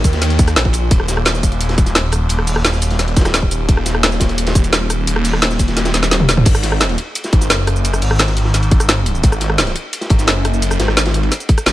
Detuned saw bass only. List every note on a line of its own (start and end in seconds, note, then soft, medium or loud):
0.04 0.55 D#2 loud
0.56 0.90 A#1 loud
0.91 1.42 D#1 medium
1.43 2.29 D#1 loud
2.30 2.81 D#1 loud
2.82 3.15 D#1 medium
3.17 3.50 D#1 loud
3.51 3.67 D#1 loud
3.69 4.19 D#1 loud
4.21 5.06 D#1 medium
5.07 5.58 D#1 loud
5.59 5.93 D#1 medium
5.94 6.27 D#1 loud
6.29 6.45 D#1 medium
6.46 6.97 G#1 loud
7.33 7.49 G#1 loud
7.50 8.01 F#1 loud
8.02 8.53 G#1 loud
8.54 9.22 G#1 loud
9.24 9.74 G#1 medium
10.10 10.26 G#1 loud
10.28 10.78 F#1 loud
10.80 11.30 G#1 loud
11.66 11.72 G#1 loud